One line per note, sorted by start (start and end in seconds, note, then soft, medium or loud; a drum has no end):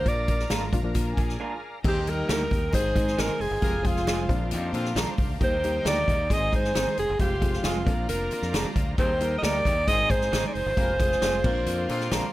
0.00 1.36 F3 medium
0.00 1.36 D4 medium
0.00 1.13 A#4 medium
0.00 1.36 A#4 medium
0.00 1.79 A#4 medium
0.00 1.80 D5 medium
0.00 1.80 F5 medium
0.00 1.13 A#5 loud
0.00 1.80 A#5 medium
0.04 0.43 A#1 loud
0.04 0.44 F3 medium
0.04 0.44 A#3 medium
0.04 0.44 D4 medium
0.04 0.44 F4 medium
0.04 0.52 D5 medium
0.04 kick loud
0.04 closed hi-hat medium
0.28 kick medium
0.28 closed hi-hat medium
0.28 muted conga soft
0.39 snare soft
0.50 0.69 G#1 loud
0.50 0.63 A#3 medium
0.50 0.63 D4 medium
0.50 0.63 F4 medium
0.50 0.63 A#4 medium
0.50 snare loud
0.50 closed hi-hat medium
0.50 high conga medium
0.73 0.91 A#1 medium
0.73 0.79 F3 medium
0.73 0.79 A#3 medium
0.73 0.79 D4 medium
0.73 0.80 F4 loud
0.73 kick loud
0.73 closed hi-hat medium
0.73 low conga medium
0.83 1.35 F3 medium
0.83 1.35 A#3 medium
0.83 1.35 D4 medium
0.83 1.36 F4 medium
0.95 1.14 A#2 medium
0.95 kick medium
0.95 closed hi-hat loud
0.95 muted conga soft
1.16 1.36 A#2 medium
1.16 1.61 G#4 medium
1.16 1.60 G#5 medium
1.16 kick medium
1.16 closed hi-hat medium
1.16 muted conga medium
1.29 snare soft
1.40 1.52 A#3 medium
1.40 1.52 D4 medium
1.40 1.53 F4 medium
1.40 1.53 A#4 medium
1.83 2.22 D#2 loud
1.83 1.97 D#3 medium
1.83 1.97 G3 medium
1.83 1.97 A#3 medium
1.83 2.02 C4 loud
1.83 2.72 D#4 medium
1.83 1.97 D#4 medium
1.83 1.97 G4 medium
1.83 2.03 G#4 loud
1.83 2.72 A#4 medium
1.83 2.71 A#4 medium
1.83 2.03 C5 loud
1.83 3.60 D#5 medium
1.83 2.71 G5 medium
1.83 2.72 G5 medium
1.83 2.72 A#5 medium
1.83 kick loud
1.83 crash medium
1.83 muted conga soft
1.88 2.11 G4 medium
2.07 2.58 D#3 medium
2.07 2.58 G3 medium
2.07 2.49 G3 medium
2.07 2.58 A#3 medium
2.07 2.49 D#4 medium
2.07 2.59 D#4 medium
2.07 2.59 G4 medium
2.07 2.49 A#4 medium
2.07 2.30 A#4 medium
2.07 closed hi-hat medium
2.07 muted conga medium
2.29 2.48 D2 loud
2.29 2.41 A#3 medium
2.29 2.41 D#4 medium
2.29 2.42 G4 medium
2.29 2.42 A#4 medium
2.29 2.72 A#4 loud
2.29 snare loud
2.29 closed hi-hat medium
2.29 high conga medium
2.51 2.70 D#2 medium
2.51 kick medium
2.51 closed hi-hat medium
2.51 low conga medium
2.73 2.92 G#1 loud
2.73 3.44 D#3 medium
2.73 3.15 D#3 loud
2.73 3.45 G#3 medium
2.73 3.15 C4 loud
2.73 3.45 C4 medium
2.73 3.60 D#4 medium
2.73 3.45 D#4 medium
2.73 2.79 G4 medium
2.73 3.15 G#4 loud
2.73 5.38 C5 medium
2.73 3.60 C5 medium
2.73 3.21 C5 loud
2.73 3.60 G#5 loud
2.73 4.28 G#5 medium
2.73 4.27 C6 medium
2.73 kick medium
2.73 closed hi-hat loud
2.73 muted conga medium
2.79 3.48 G#4 medium
2.95 3.14 G#2 loud
2.95 kick medium
2.95 closed hi-hat medium
2.95 muted conga soft
2.95 low conga medium
3.07 snare soft
3.18 3.27 G#1 loud
3.18 3.30 G#3 medium
3.18 3.30 C4 medium
3.18 3.31 D#4 medium
3.18 3.31 G#4 medium
3.18 3.43 A#4 loud
3.18 snare loud
3.18 closed hi-hat medium
3.18 high conga medium
3.29 high conga medium
3.40 3.49 F1 medium
3.40 3.88 G#4 loud
3.40 open hi-hat medium
3.51 3.60 G1 medium
3.61 4.26 F1 medium
3.61 3.75 F3 medium
3.61 3.75 G#3 medium
3.61 3.80 A#3 loud
3.61 3.75 C4 medium
3.61 4.28 F4 medium
3.61 3.75 F4 medium
3.61 3.80 G4 loud
3.61 3.76 G#4 medium
3.61 3.80 A#4 loud
3.61 4.27 C5 medium
3.61 5.40 F5 medium
3.61 4.28 G#5 medium
3.61 kick loud
3.61 closed hi-hat medium
3.61 muted conga soft
3.83 4.28 F3 medium
3.83 4.27 F3 medium
3.83 4.29 G#3 medium
3.83 4.28 C4 medium
3.83 4.27 C4 medium
3.83 4.28 F4 medium
3.83 4.52 F4 medium
3.83 4.29 G#4 medium
3.83 4.27 G#4 loud
3.83 kick loud
3.83 closed hi-hat medium
3.83 muted conga soft
3.96 snare soft
4.07 4.19 G#3 medium
4.07 4.19 C4 medium
4.07 4.20 F4 medium
4.07 4.20 G#4 medium
4.07 snare loud
4.07 closed hi-hat medium
4.07 high conga medium
4.29 4.53 A#1 loud
4.29 5.00 F3 medium
4.29 5.01 A#3 medium
4.29 5.01 C4 medium
4.29 5.01 D4 medium
4.29 5.39 D4 medium
4.29 5.01 F4 medium
4.29 5.39 C5 medium
4.29 5.40 D5 medium
4.29 5.39 F5 medium
4.29 6.28 A#5 medium
4.29 kick loud
4.29 closed hi-hat medium
4.29 low conga medium
4.51 4.70 F2 medium
4.51 4.70 G3 medium
4.51 4.70 D#4 medium
4.51 4.70 G4 loud
4.51 closed hi-hat loud
4.51 muted conga medium
4.73 4.92 A#2 loud
4.73 4.92 D3 loud
4.73 4.92 C4 loud
4.73 4.92 F4 loud
4.73 closed hi-hat medium
4.73 muted conga medium
4.85 snare soft
4.95 5.05 A#1 loud
4.95 5.08 F3 medium
4.95 5.09 C4 medium
4.95 5.09 D4 medium
4.95 5.09 A#4 loud
4.95 snare loud
4.95 closed hi-hat loud
4.95 high conga medium
5.07 high conga medium
5.18 5.28 C2 medium
5.18 kick loud
5.18 open hi-hat medium
5.29 5.39 D2 medium
5.40 5.78 D#2 loud
5.40 5.53 D#3 medium
5.40 5.54 G3 medium
5.40 5.54 A#3 medium
5.40 6.29 D#4 medium
5.40 5.54 D#4 medium
5.40 6.29 D#4 medium
5.40 5.54 G4 medium
5.40 6.29 A#4 medium
5.40 5.84 C5 loud
5.40 6.29 G5 medium
5.40 6.28 G5 loud
5.40 kick loud
5.40 closed hi-hat medium
5.40 muted conga soft
5.63 6.15 D#3 medium
5.63 6.15 G3 medium
5.63 6.15 A#3 medium
5.63 6.15 D#4 medium
5.63 6.15 G4 medium
5.63 closed hi-hat medium
5.63 muted conga soft
5.85 6.04 D2 loud
5.85 5.98 A#3 medium
5.85 5.98 D#4 medium
5.85 5.99 G4 medium
5.85 5.99 A#4 medium
5.85 6.35 D5 loud
5.85 snare loud
5.85 closed hi-hat medium
5.85 high conga medium
6.08 6.26 D#2 medium
6.08 kick medium
6.08 closed hi-hat medium
6.08 low conga medium
6.29 6.49 G#1 loud
6.29 7.02 D#3 medium
6.29 7.02 G#3 medium
6.29 6.36 A#3 medium
6.29 7.18 D#4 medium
6.29 7.02 D#4 medium
6.29 7.02 G#4 medium
6.29 7.18 C5 medium
6.29 7.18 D#5 medium
6.29 7.18 G#5 loud
6.29 7.18 C6 medium
6.29 kick loud
6.29 closed hi-hat loud
6.29 muted conga medium
6.33 7.05 C4 medium
6.33 6.54 D#5 loud
6.52 6.71 G#2 loud
6.52 6.96 C5 loud
6.52 kick medium
6.52 closed hi-hat medium
6.52 muted conga soft
6.52 low conga medium
6.64 snare soft
6.75 6.85 G#1 loud
6.75 6.87 G#3 medium
6.75 6.87 C4 medium
6.75 6.88 D#4 medium
6.75 6.88 G#4 medium
6.75 snare loud
6.75 closed hi-hat loud
6.75 high conga medium
6.87 high conga medium
6.97 7.07 F1 medium
6.97 7.19 G#4 loud
6.97 closed hi-hat medium
7.10 7.18 G1 loud
7.19 7.57 F1 loud
7.19 7.32 F3 medium
7.19 7.33 G#3 medium
7.19 7.33 C4 medium
7.19 7.85 F4 medium
7.19 7.33 F4 medium
7.19 7.62 G4 medium
7.19 7.33 G#4 medium
7.19 8.97 C5 medium
7.19 8.97 F5 medium
7.19 7.86 F5 medium
7.19 7.86 C6 medium
7.19 7.85 C6 medium
7.19 kick medium
7.19 closed hi-hat medium
7.19 muted conga soft
7.41 7.86 F3 medium
7.41 7.86 G#3 medium
7.41 7.85 C4 medium
7.41 7.86 F4 medium
7.41 7.87 G#4 medium
7.41 kick loud
7.41 closed hi-hat medium
7.41 muted conga soft
7.53 snare soft
7.64 7.83 F1 loud
7.64 7.77 G#3 medium
7.64 7.77 C4 medium
7.64 8.06 F4 medium
7.64 7.77 F4 medium
7.64 7.77 G#4 medium
7.64 snare loud
7.64 closed hi-hat medium
7.64 high conga medium
7.86 8.05 A#1 loud
7.86 8.58 A#3 medium
7.86 8.58 C4 medium
7.86 8.58 D4 medium
7.86 8.96 F4 medium
7.86 8.59 F4 medium
7.86 7.92 A4 medium
7.86 8.97 D5 medium
7.86 9.86 A#5 medium
7.86 8.96 A#5 medium
7.86 kick loud
7.86 closed hi-hat medium
7.86 low conga medium
7.93 8.61 A#4 medium
8.09 8.28 F1 medium
8.09 8.72 A#4 medium
8.09 closed hi-hat loud
8.09 muted conga medium
8.31 muted fingered electric bass stroke medium
8.31 closed hi-hat medium
8.31 muted conga soft
8.42 8.52 F2 medium
8.42 snare soft
8.54 8.63 F1 medium
8.54 8.66 F3 medium
8.54 8.66 C4 medium
8.54 8.67 D4 loud
8.54 8.67 A#4 medium
8.54 snare loud
8.54 closed hi-hat medium
8.54 high conga medium
8.64 high conga medium
8.75 8.94 D2 medium
8.75 kick loud
8.75 closed hi-hat medium
8.97 9.36 D#2 loud
8.97 9.11 G3 medium
8.97 9.11 A#3 medium
8.97 9.16 C4 loud
8.97 9.86 D#4 medium
8.97 10.75 D#4 medium
8.97 9.11 D#4 medium
8.97 9.11 G4 medium
8.97 9.17 G#4 loud
8.97 9.86 A#4 medium
8.97 9.87 A#4 medium
8.97 9.12 A#4 medium
8.97 9.17 C5 loud
8.97 9.34 C5 loud
8.97 9.86 G5 medium
8.97 9.87 G5 medium
8.97 kick loud
8.97 closed hi-hat medium
8.97 muted conga soft
9.20 9.72 G3 medium
9.20 9.63 G3 medium
9.20 9.72 A#3 medium
9.20 9.72 D#4 medium
9.20 9.63 D#4 medium
9.20 9.72 G4 medium
9.20 9.73 A#4 medium
9.20 9.63 A#4 medium
9.20 closed hi-hat medium
9.20 muted conga medium
9.38 9.45 D#5 medium
9.42 9.61 D2 loud
9.42 9.55 A#3 medium
9.42 9.55 D#4 medium
9.42 9.56 G4 medium
9.42 9.56 A#4 medium
9.42 9.89 D5 loud
9.42 snare loud
9.42 closed hi-hat medium
9.42 high conga medium
9.65 9.84 D#2 loud
9.65 kick medium
9.65 closed hi-hat medium
9.65 low conga medium
9.87 10.06 G#1 medium
9.87 10.30 D#3 loud
9.87 10.59 G#3 medium
9.87 10.59 C4 medium
9.87 10.30 C4 loud
9.87 10.75 D#4 medium
9.87 10.60 D#4 medium
9.87 10.30 G#4 loud
9.87 10.60 G#4 medium
9.87 10.75 C5 medium
9.87 10.76 C5 medium
9.87 10.60 C5 medium
9.87 10.12 D#5 loud
9.87 10.75 G#5 loud
9.87 11.43 G#5 medium
9.87 10.75 C6 medium
9.87 kick loud
9.87 closed hi-hat loud
9.87 muted conga medium
10.10 10.29 G#2 medium
10.10 10.47 C5 loud
10.10 kick medium
10.10 closed hi-hat medium
10.10 muted conga medium
10.10 low conga medium
10.21 snare soft
10.32 10.42 G#1 loud
10.32 10.45 G#3 medium
10.32 10.45 C4 medium
10.32 10.45 D#4 medium
10.32 10.45 G#4 medium
10.32 snare loud
10.32 closed hi-hat medium
10.32 high conga medium
10.43 10.55 D5 medium
10.43 high conga medium
10.54 10.64 F1 medium
10.54 12.33 C5 loud
10.54 open hi-hat medium
10.66 10.76 G1 loud
10.76 11.15 F1 loud
10.76 10.90 G#3 medium
10.76 10.96 A#3 loud
10.76 10.90 C4 medium
10.76 11.42 F4 medium
10.76 10.90 F4 medium
10.76 10.95 G4 loud
10.76 10.90 G#4 medium
10.76 10.96 A#4 loud
10.76 11.43 C5 medium
10.76 12.33 C5 medium
10.76 10.90 C5 medium
10.76 11.44 F5 medium
10.76 11.43 G#5 medium
10.76 11.43 C6 medium
10.76 kick loud
10.76 closed hi-hat medium
10.76 muted conga soft
10.99 11.42 F3 medium
10.99 11.44 G#3 medium
10.99 11.42 C4 medium
10.99 11.44 C4 medium
10.99 11.45 F4 medium
10.99 11.42 G#4 medium
10.99 11.45 G#4 medium
10.99 11.45 C5 medium
10.99 kick loud
10.99 closed hi-hat medium
10.99 muted conga soft
11.12 snare soft
11.22 11.41 F1 medium
11.22 11.34 G#3 medium
11.22 11.34 C4 medium
11.22 11.35 F4 medium
11.22 11.35 G#4 medium
11.22 snare loud
11.22 closed hi-hat medium
11.22 high conga medium
11.44 11.63 A#1 loud
11.44 12.16 A#3 loud
11.44 12.17 C4 medium
11.44 11.50 C#4 medium
11.44 12.33 F4 medium
11.44 12.17 F4 loud
11.44 12.17 A#4 loud
11.44 12.33 D5 medium
11.44 12.33 F5 medium
11.44 12.33 A#5 medium
11.44 12.33 C6 medium
11.44 kick loud
11.44 crash medium
11.44 low conga medium
11.51 12.19 D4 medium
11.66 11.85 F2 medium
11.66 11.85 D3 medium
11.66 11.85 C4 medium
11.66 11.84 F4 loud
11.66 closed hi-hat loud
11.66 muted conga medium
11.89 12.08 A#2 loud
11.89 12.07 D3 loud
11.89 12.07 C4 loud
11.89 12.07 F4 loud
11.89 closed hi-hat medium
11.89 muted conga medium
12.00 snare soft
12.11 12.21 A#1 loud
12.11 12.24 F3 medium
12.11 12.24 C4 medium
12.11 12.24 D4 medium
12.11 12.24 A#4 loud
12.11 snare loud
12.11 closed hi-hat medium
12.11 high conga medium
12.22 high conga medium